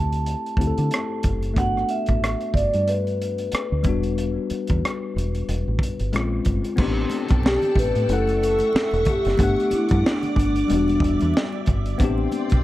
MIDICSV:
0, 0, Header, 1, 7, 480
1, 0, Start_track
1, 0, Key_signature, 1, "minor"
1, 0, Tempo, 652174
1, 1150, Time_signature, 4, 2, 24, 8
1, 9302, End_track
2, 0, Start_track
2, 0, Title_t, "Ambient pad"
2, 0, Program_c, 0, 92
2, 4992, Note_on_c, 0, 69, 77
2, 4993, Note_on_c, 0, 81, 92
2, 4994, Note_on_c, 0, 74, 68
2, 4995, Note_on_c, 0, 79, 69
2, 5939, Note_off_c, 0, 69, 0
2, 5942, Note_off_c, 0, 81, 0
2, 5943, Note_off_c, 0, 74, 0
2, 5943, Note_off_c, 0, 79, 0
2, 5947, Note_on_c, 0, 76, 82
2, 5947, Note_on_c, 0, 85, 87
2, 5948, Note_on_c, 0, 69, 75
2, 5949, Note_on_c, 0, 78, 85
2, 6899, Note_off_c, 0, 76, 0
2, 6899, Note_off_c, 0, 85, 0
2, 6900, Note_off_c, 0, 69, 0
2, 6909, Note_on_c, 0, 86, 95
2, 6912, Note_on_c, 0, 74, 75
2, 7850, Note_off_c, 0, 78, 0
2, 7873, Note_on_c, 0, 76, 69
2, 8811, Note_off_c, 0, 86, 0
2, 8812, Note_off_c, 0, 74, 0
2, 8822, Note_off_c, 0, 76, 0
2, 8828, Note_on_c, 0, 79, 74
2, 8830, Note_on_c, 0, 74, 75
2, 8831, Note_on_c, 0, 84, 91
2, 9302, Note_off_c, 0, 74, 0
2, 9302, Note_off_c, 0, 79, 0
2, 9302, Note_off_c, 0, 84, 0
2, 9302, End_track
3, 0, Start_track
3, 0, Title_t, "Vibraphone"
3, 0, Program_c, 1, 11
3, 0, Note_on_c, 1, 81, 87
3, 885, Note_off_c, 1, 81, 0
3, 1160, Note_on_c, 1, 78, 96
3, 1400, Note_on_c, 1, 76, 96
3, 1402, Note_off_c, 1, 78, 0
3, 1875, Note_on_c, 1, 74, 90
3, 1889, Note_off_c, 1, 76, 0
3, 2116, Note_on_c, 1, 71, 72
3, 2120, Note_off_c, 1, 74, 0
3, 4484, Note_off_c, 1, 71, 0
3, 5486, Note_on_c, 1, 67, 98
3, 5702, Note_off_c, 1, 67, 0
3, 5725, Note_on_c, 1, 71, 106
3, 5964, Note_off_c, 1, 71, 0
3, 5965, Note_on_c, 1, 69, 94
3, 6194, Note_off_c, 1, 69, 0
3, 6203, Note_on_c, 1, 69, 106
3, 6647, Note_off_c, 1, 69, 0
3, 6687, Note_on_c, 1, 67, 89
3, 7165, Note_on_c, 1, 64, 86
3, 7173, Note_off_c, 1, 67, 0
3, 7405, Note_off_c, 1, 64, 0
3, 7408, Note_on_c, 1, 62, 96
3, 7639, Note_off_c, 1, 62, 0
3, 7648, Note_on_c, 1, 62, 85
3, 8330, Note_off_c, 1, 62, 0
3, 9302, End_track
4, 0, Start_track
4, 0, Title_t, "Tine electric piano"
4, 0, Program_c, 2, 4
4, 0, Control_c, 2, 64, 127
4, 0, Note_on_c, 2, 57, 59
4, 0, Note_on_c, 2, 60, 51
4, 0, Note_on_c, 2, 64, 54
4, 0, Note_on_c, 2, 67, 64
4, 398, Note_off_c, 2, 57, 0
4, 406, Note_off_c, 2, 60, 0
4, 413, Note_off_c, 2, 64, 0
4, 421, Note_off_c, 2, 67, 0
4, 425, Note_on_c, 2, 57, 52
4, 432, Note_on_c, 2, 60, 49
4, 440, Note_on_c, 2, 64, 48
4, 448, Note_on_c, 2, 67, 46
4, 494, Note_off_c, 2, 67, 0
4, 495, Note_on_c, 2, 69, 53
4, 1125, Note_off_c, 2, 57, 0
4, 1133, Note_on_c, 2, 57, 58
4, 1149, Note_on_c, 2, 59, 53
4, 1151, Note_off_c, 2, 60, 0
4, 1155, Note_off_c, 2, 64, 0
4, 1160, Control_c, 2, 64, 0
4, 1165, Note_on_c, 2, 62, 53
4, 1181, Note_on_c, 2, 66, 61
4, 1182, Note_off_c, 2, 69, 0
4, 1306, Control_c, 2, 64, 127
4, 2792, Note_off_c, 2, 57, 0
4, 2800, Note_off_c, 2, 59, 0
4, 2808, Note_off_c, 2, 62, 0
4, 2816, Note_off_c, 2, 66, 0
4, 2818, Note_on_c, 2, 55, 71
4, 2834, Note_on_c, 2, 59, 65
4, 2840, Control_c, 2, 64, 0
4, 2849, Note_on_c, 2, 62, 64
4, 2864, Note_on_c, 2, 66, 78
4, 2948, Control_c, 2, 64, 127
4, 4475, Note_off_c, 2, 55, 0
4, 4482, Note_off_c, 2, 59, 0
4, 4490, Note_off_c, 2, 62, 0
4, 4497, Note_off_c, 2, 66, 0
4, 4509, Note_on_c, 2, 56, 74
4, 4517, Note_on_c, 2, 60, 62
4, 4521, Control_c, 2, 64, 0
4, 4525, Note_on_c, 2, 61, 57
4, 4532, Note_on_c, 2, 65, 79
4, 4660, Control_c, 2, 64, 127
4, 4976, Note_on_c, 2, 59, 76
4, 4982, Note_off_c, 2, 60, 0
4, 4990, Note_off_c, 2, 56, 0
4, 4991, Note_on_c, 2, 60, 68
4, 4997, Note_off_c, 2, 61, 0
4, 4999, Control_c, 2, 64, 0
4, 5001, Note_off_c, 2, 65, 0
4, 5006, Note_on_c, 2, 62, 70
4, 5022, Note_on_c, 2, 67, 89
4, 5116, Control_c, 2, 64, 127
4, 5924, Note_off_c, 2, 59, 0
4, 5931, Note_off_c, 2, 60, 0
4, 5936, Note_on_c, 2, 57, 64
4, 5939, Note_off_c, 2, 62, 0
4, 5947, Note_off_c, 2, 67, 0
4, 5953, Note_on_c, 2, 61, 58
4, 5958, Control_c, 2, 64, 0
4, 5968, Note_on_c, 2, 64, 61
4, 5984, Note_on_c, 2, 78, 75
4, 6071, Control_c, 2, 64, 127
4, 6884, Note_off_c, 2, 57, 0
4, 6892, Note_off_c, 2, 61, 0
4, 6897, Note_on_c, 2, 57, 70
4, 6900, Note_off_c, 2, 64, 0
4, 6908, Note_off_c, 2, 78, 0
4, 6912, Note_on_c, 2, 59, 64
4, 6919, Control_c, 2, 64, 0
4, 6929, Note_on_c, 2, 62, 66
4, 6943, Note_on_c, 2, 78, 74
4, 7057, Control_c, 2, 64, 127
4, 7844, Note_off_c, 2, 57, 0
4, 7852, Note_off_c, 2, 59, 0
4, 7859, Note_on_c, 2, 55, 70
4, 7860, Note_off_c, 2, 62, 0
4, 7868, Note_off_c, 2, 78, 0
4, 7875, Note_on_c, 2, 59, 57
4, 7879, Control_c, 2, 64, 0
4, 7891, Note_on_c, 2, 62, 57
4, 7905, Note_on_c, 2, 66, 66
4, 7996, Control_c, 2, 64, 127
4, 8805, Note_off_c, 2, 55, 0
4, 8808, Note_off_c, 2, 59, 0
4, 8817, Note_on_c, 2, 59, 82
4, 8821, Note_off_c, 2, 62, 0
4, 8829, Note_off_c, 2, 66, 0
4, 8831, Note_on_c, 2, 60, 77
4, 8840, Control_c, 2, 64, 0
4, 8847, Note_on_c, 2, 62, 73
4, 8864, Note_on_c, 2, 67, 91
4, 8986, Control_c, 2, 64, 127
4, 9302, Note_off_c, 2, 59, 0
4, 9302, Note_off_c, 2, 60, 0
4, 9302, Note_off_c, 2, 62, 0
4, 9302, Note_off_c, 2, 67, 0
4, 9302, End_track
5, 0, Start_track
5, 0, Title_t, "Fingered electric bass"
5, 0, Program_c, 3, 33
5, 0, Note_on_c, 3, 38, 71
5, 252, Note_off_c, 3, 38, 0
5, 424, Note_on_c, 3, 38, 77
5, 537, Note_off_c, 3, 38, 0
5, 577, Note_on_c, 3, 50, 82
5, 654, Note_off_c, 3, 50, 0
5, 918, Note_on_c, 3, 30, 78
5, 1156, Note_off_c, 3, 30, 0
5, 1156, Note_on_c, 3, 31, 84
5, 1345, Note_off_c, 3, 31, 0
5, 1540, Note_on_c, 3, 33, 86
5, 1726, Note_off_c, 3, 33, 0
5, 1873, Note_on_c, 3, 31, 75
5, 1982, Note_off_c, 3, 31, 0
5, 2019, Note_on_c, 3, 43, 82
5, 2567, Note_off_c, 3, 43, 0
5, 2739, Note_on_c, 3, 38, 70
5, 2816, Note_off_c, 3, 38, 0
5, 2836, Note_on_c, 3, 28, 86
5, 3216, Note_off_c, 3, 28, 0
5, 3462, Note_on_c, 3, 40, 90
5, 3538, Note_off_c, 3, 40, 0
5, 3799, Note_on_c, 3, 28, 77
5, 3987, Note_off_c, 3, 28, 0
5, 4039, Note_on_c, 3, 28, 81
5, 4146, Note_off_c, 3, 28, 0
5, 4178, Note_on_c, 3, 33, 84
5, 4255, Note_off_c, 3, 33, 0
5, 4420, Note_on_c, 3, 31, 75
5, 4496, Note_off_c, 3, 31, 0
5, 4519, Note_on_c, 3, 34, 88
5, 4706, Note_off_c, 3, 34, 0
5, 4760, Note_on_c, 3, 31, 72
5, 4866, Note_off_c, 3, 31, 0
5, 4998, Note_on_c, 3, 33, 107
5, 5186, Note_off_c, 3, 33, 0
5, 5382, Note_on_c, 3, 35, 88
5, 5567, Note_off_c, 3, 35, 0
5, 5714, Note_on_c, 3, 33, 83
5, 5822, Note_off_c, 3, 33, 0
5, 5856, Note_on_c, 3, 45, 95
5, 5934, Note_off_c, 3, 45, 0
5, 5956, Note_on_c, 3, 30, 101
5, 6336, Note_off_c, 3, 30, 0
5, 6575, Note_on_c, 3, 28, 80
5, 6653, Note_off_c, 3, 28, 0
5, 6817, Note_on_c, 3, 30, 85
5, 6895, Note_off_c, 3, 30, 0
5, 6915, Note_on_c, 3, 31, 98
5, 7023, Note_off_c, 3, 31, 0
5, 7298, Note_on_c, 3, 43, 98
5, 7375, Note_off_c, 3, 43, 0
5, 7630, Note_on_c, 3, 31, 75
5, 7821, Note_off_c, 3, 31, 0
5, 7881, Note_on_c, 3, 28, 103
5, 8068, Note_off_c, 3, 28, 0
5, 8104, Note_on_c, 3, 28, 93
5, 8216, Note_off_c, 3, 28, 0
5, 8260, Note_on_c, 3, 40, 91
5, 8336, Note_off_c, 3, 40, 0
5, 8599, Note_on_c, 3, 31, 87
5, 8787, Note_off_c, 3, 31, 0
5, 8836, Note_on_c, 3, 33, 99
5, 9024, Note_off_c, 3, 33, 0
5, 9220, Note_on_c, 3, 35, 90
5, 9302, Note_off_c, 3, 35, 0
5, 9302, End_track
6, 0, Start_track
6, 0, Title_t, "Muted fingered electric bass strokes"
6, 2600, Note_on_c, 9, 29, 42
6, 2673, Note_off_c, 9, 29, 0
6, 3320, Note_on_c, 9, 29, 43
6, 3393, Note_off_c, 9, 29, 0
6, 6439, Note_on_c, 9, 29, 51
6, 6512, Note_off_c, 9, 29, 0
6, 7159, Note_on_c, 9, 29, 51
6, 7233, Note_off_c, 9, 29, 0
6, 9302, End_track
7, 0, Start_track
7, 0, Title_t, "Drums"
7, 91, Note_on_c, 9, 42, 41
7, 165, Note_off_c, 9, 42, 0
7, 194, Note_on_c, 9, 42, 68
7, 267, Note_off_c, 9, 42, 0
7, 341, Note_on_c, 9, 42, 31
7, 414, Note_off_c, 9, 42, 0
7, 419, Note_on_c, 9, 36, 79
7, 450, Note_on_c, 9, 42, 62
7, 492, Note_off_c, 9, 36, 0
7, 524, Note_off_c, 9, 42, 0
7, 571, Note_on_c, 9, 42, 47
7, 645, Note_off_c, 9, 42, 0
7, 669, Note_on_c, 9, 42, 69
7, 691, Note_on_c, 9, 37, 102
7, 742, Note_off_c, 9, 42, 0
7, 764, Note_off_c, 9, 37, 0
7, 905, Note_on_c, 9, 42, 64
7, 914, Note_on_c, 9, 36, 84
7, 979, Note_off_c, 9, 42, 0
7, 987, Note_off_c, 9, 36, 0
7, 1049, Note_on_c, 9, 42, 39
7, 1122, Note_off_c, 9, 42, 0
7, 1151, Note_on_c, 9, 36, 98
7, 1158, Note_on_c, 9, 42, 67
7, 1225, Note_off_c, 9, 36, 0
7, 1231, Note_off_c, 9, 42, 0
7, 1305, Note_on_c, 9, 37, 29
7, 1378, Note_off_c, 9, 37, 0
7, 1388, Note_on_c, 9, 42, 53
7, 1461, Note_off_c, 9, 42, 0
7, 1518, Note_on_c, 9, 42, 39
7, 1536, Note_on_c, 9, 36, 76
7, 1591, Note_off_c, 9, 42, 0
7, 1609, Note_off_c, 9, 36, 0
7, 1646, Note_on_c, 9, 42, 66
7, 1647, Note_on_c, 9, 37, 86
7, 1720, Note_off_c, 9, 42, 0
7, 1721, Note_off_c, 9, 37, 0
7, 1770, Note_on_c, 9, 42, 32
7, 1844, Note_off_c, 9, 42, 0
7, 1868, Note_on_c, 9, 36, 76
7, 1891, Note_on_c, 9, 42, 55
7, 1941, Note_off_c, 9, 36, 0
7, 1965, Note_off_c, 9, 42, 0
7, 2012, Note_on_c, 9, 42, 42
7, 2086, Note_off_c, 9, 42, 0
7, 2116, Note_on_c, 9, 42, 72
7, 2189, Note_off_c, 9, 42, 0
7, 2259, Note_on_c, 9, 42, 32
7, 2332, Note_off_c, 9, 42, 0
7, 2367, Note_on_c, 9, 42, 59
7, 2440, Note_off_c, 9, 42, 0
7, 2490, Note_on_c, 9, 42, 43
7, 2563, Note_off_c, 9, 42, 0
7, 2588, Note_on_c, 9, 42, 76
7, 2610, Note_on_c, 9, 37, 102
7, 2662, Note_off_c, 9, 42, 0
7, 2684, Note_off_c, 9, 37, 0
7, 2824, Note_on_c, 9, 42, 59
7, 2831, Note_on_c, 9, 36, 100
7, 2898, Note_off_c, 9, 42, 0
7, 2904, Note_off_c, 9, 36, 0
7, 2968, Note_on_c, 9, 42, 38
7, 3042, Note_off_c, 9, 42, 0
7, 3076, Note_on_c, 9, 42, 69
7, 3149, Note_off_c, 9, 42, 0
7, 3311, Note_on_c, 9, 42, 62
7, 3385, Note_off_c, 9, 42, 0
7, 3440, Note_on_c, 9, 42, 42
7, 3457, Note_on_c, 9, 36, 82
7, 3513, Note_off_c, 9, 42, 0
7, 3531, Note_off_c, 9, 36, 0
7, 3570, Note_on_c, 9, 42, 60
7, 3571, Note_on_c, 9, 37, 89
7, 3644, Note_off_c, 9, 42, 0
7, 3645, Note_off_c, 9, 37, 0
7, 3815, Note_on_c, 9, 42, 58
7, 3888, Note_off_c, 9, 42, 0
7, 3935, Note_on_c, 9, 42, 44
7, 4008, Note_off_c, 9, 42, 0
7, 4038, Note_on_c, 9, 42, 71
7, 4112, Note_off_c, 9, 42, 0
7, 4260, Note_on_c, 9, 36, 85
7, 4291, Note_on_c, 9, 42, 67
7, 4334, Note_off_c, 9, 36, 0
7, 4364, Note_off_c, 9, 42, 0
7, 4412, Note_on_c, 9, 42, 45
7, 4486, Note_off_c, 9, 42, 0
7, 4511, Note_on_c, 9, 42, 70
7, 4533, Note_on_c, 9, 37, 103
7, 4585, Note_off_c, 9, 42, 0
7, 4607, Note_off_c, 9, 37, 0
7, 4746, Note_on_c, 9, 42, 60
7, 4755, Note_on_c, 9, 36, 84
7, 4819, Note_off_c, 9, 42, 0
7, 4828, Note_off_c, 9, 36, 0
7, 4890, Note_on_c, 9, 42, 42
7, 4963, Note_off_c, 9, 42, 0
7, 4982, Note_on_c, 9, 62, 28
7, 4982, Note_on_c, 9, 64, 60
7, 4991, Note_on_c, 9, 49, 99
7, 4992, Note_on_c, 9, 36, 114
7, 5055, Note_off_c, 9, 62, 0
7, 5055, Note_off_c, 9, 64, 0
7, 5064, Note_off_c, 9, 49, 0
7, 5066, Note_off_c, 9, 36, 0
7, 5223, Note_on_c, 9, 63, 67
7, 5230, Note_on_c, 9, 42, 65
7, 5297, Note_off_c, 9, 63, 0
7, 5304, Note_off_c, 9, 42, 0
7, 5361, Note_on_c, 9, 42, 45
7, 5377, Note_on_c, 9, 36, 97
7, 5435, Note_off_c, 9, 42, 0
7, 5450, Note_off_c, 9, 36, 0
7, 5471, Note_on_c, 9, 62, 34
7, 5490, Note_on_c, 9, 38, 101
7, 5545, Note_off_c, 9, 62, 0
7, 5563, Note_off_c, 9, 38, 0
7, 5609, Note_on_c, 9, 64, 52
7, 5612, Note_on_c, 9, 42, 36
7, 5682, Note_off_c, 9, 64, 0
7, 5686, Note_off_c, 9, 42, 0
7, 5708, Note_on_c, 9, 36, 80
7, 5708, Note_on_c, 9, 63, 61
7, 5732, Note_on_c, 9, 42, 64
7, 5782, Note_off_c, 9, 36, 0
7, 5782, Note_off_c, 9, 63, 0
7, 5806, Note_off_c, 9, 42, 0
7, 5854, Note_on_c, 9, 42, 47
7, 5927, Note_off_c, 9, 42, 0
7, 5954, Note_on_c, 9, 42, 76
7, 6027, Note_off_c, 9, 42, 0
7, 6091, Note_on_c, 9, 62, 29
7, 6099, Note_on_c, 9, 42, 38
7, 6165, Note_off_c, 9, 62, 0
7, 6173, Note_off_c, 9, 42, 0
7, 6207, Note_on_c, 9, 42, 65
7, 6280, Note_off_c, 9, 42, 0
7, 6320, Note_on_c, 9, 63, 65
7, 6328, Note_on_c, 9, 42, 48
7, 6394, Note_off_c, 9, 63, 0
7, 6401, Note_off_c, 9, 42, 0
7, 6423, Note_on_c, 9, 62, 34
7, 6447, Note_on_c, 9, 38, 127
7, 6497, Note_off_c, 9, 62, 0
7, 6520, Note_off_c, 9, 38, 0
7, 6560, Note_on_c, 9, 62, 30
7, 6576, Note_on_c, 9, 42, 32
7, 6634, Note_off_c, 9, 62, 0
7, 6649, Note_off_c, 9, 42, 0
7, 6662, Note_on_c, 9, 42, 65
7, 6667, Note_on_c, 9, 64, 69
7, 6672, Note_on_c, 9, 36, 90
7, 6735, Note_off_c, 9, 42, 0
7, 6741, Note_off_c, 9, 64, 0
7, 6746, Note_off_c, 9, 36, 0
7, 6806, Note_on_c, 9, 42, 49
7, 6827, Note_on_c, 9, 38, 36
7, 6880, Note_off_c, 9, 42, 0
7, 6900, Note_off_c, 9, 38, 0
7, 6900, Note_on_c, 9, 62, 29
7, 6900, Note_on_c, 9, 64, 59
7, 6910, Note_on_c, 9, 36, 106
7, 6915, Note_on_c, 9, 42, 84
7, 6974, Note_off_c, 9, 62, 0
7, 6974, Note_off_c, 9, 64, 0
7, 6984, Note_off_c, 9, 36, 0
7, 6988, Note_off_c, 9, 42, 0
7, 7040, Note_on_c, 9, 62, 24
7, 7064, Note_on_c, 9, 42, 33
7, 7113, Note_off_c, 9, 62, 0
7, 7137, Note_off_c, 9, 42, 0
7, 7146, Note_on_c, 9, 63, 65
7, 7148, Note_on_c, 9, 42, 68
7, 7220, Note_off_c, 9, 63, 0
7, 7221, Note_off_c, 9, 42, 0
7, 7276, Note_on_c, 9, 42, 46
7, 7295, Note_on_c, 9, 36, 98
7, 7349, Note_off_c, 9, 42, 0
7, 7368, Note_off_c, 9, 36, 0
7, 7407, Note_on_c, 9, 38, 98
7, 7480, Note_off_c, 9, 38, 0
7, 7528, Note_on_c, 9, 62, 25
7, 7528, Note_on_c, 9, 64, 55
7, 7529, Note_on_c, 9, 42, 34
7, 7602, Note_off_c, 9, 62, 0
7, 7602, Note_off_c, 9, 64, 0
7, 7603, Note_off_c, 9, 42, 0
7, 7627, Note_on_c, 9, 36, 86
7, 7628, Note_on_c, 9, 63, 59
7, 7649, Note_on_c, 9, 42, 62
7, 7700, Note_off_c, 9, 36, 0
7, 7701, Note_off_c, 9, 63, 0
7, 7723, Note_off_c, 9, 42, 0
7, 7770, Note_on_c, 9, 42, 48
7, 7844, Note_off_c, 9, 42, 0
7, 7862, Note_on_c, 9, 62, 31
7, 7872, Note_on_c, 9, 42, 78
7, 7936, Note_off_c, 9, 62, 0
7, 7946, Note_off_c, 9, 42, 0
7, 8007, Note_on_c, 9, 62, 32
7, 8017, Note_on_c, 9, 42, 35
7, 8081, Note_off_c, 9, 62, 0
7, 8091, Note_off_c, 9, 42, 0
7, 8098, Note_on_c, 9, 36, 100
7, 8126, Note_on_c, 9, 42, 73
7, 8172, Note_off_c, 9, 36, 0
7, 8200, Note_off_c, 9, 42, 0
7, 8240, Note_on_c, 9, 63, 63
7, 8247, Note_on_c, 9, 42, 54
7, 8314, Note_off_c, 9, 63, 0
7, 8321, Note_off_c, 9, 42, 0
7, 8344, Note_on_c, 9, 62, 33
7, 8368, Note_on_c, 9, 38, 115
7, 8417, Note_off_c, 9, 62, 0
7, 8441, Note_off_c, 9, 38, 0
7, 8483, Note_on_c, 9, 62, 31
7, 8556, Note_off_c, 9, 62, 0
7, 8582, Note_on_c, 9, 42, 71
7, 8593, Note_on_c, 9, 36, 88
7, 8593, Note_on_c, 9, 64, 65
7, 8656, Note_off_c, 9, 42, 0
7, 8666, Note_off_c, 9, 36, 0
7, 8667, Note_off_c, 9, 64, 0
7, 8726, Note_on_c, 9, 42, 46
7, 8800, Note_off_c, 9, 42, 0
7, 8823, Note_on_c, 9, 62, 26
7, 8823, Note_on_c, 9, 64, 68
7, 8831, Note_on_c, 9, 36, 112
7, 8835, Note_on_c, 9, 42, 83
7, 8897, Note_off_c, 9, 62, 0
7, 8897, Note_off_c, 9, 64, 0
7, 8904, Note_off_c, 9, 36, 0
7, 8908, Note_off_c, 9, 42, 0
7, 8962, Note_on_c, 9, 62, 26
7, 9036, Note_off_c, 9, 62, 0
7, 9065, Note_on_c, 9, 63, 67
7, 9068, Note_on_c, 9, 42, 60
7, 9139, Note_off_c, 9, 63, 0
7, 9142, Note_off_c, 9, 42, 0
7, 9197, Note_on_c, 9, 42, 42
7, 9216, Note_on_c, 9, 36, 97
7, 9271, Note_off_c, 9, 42, 0
7, 9289, Note_off_c, 9, 36, 0
7, 9302, End_track
0, 0, End_of_file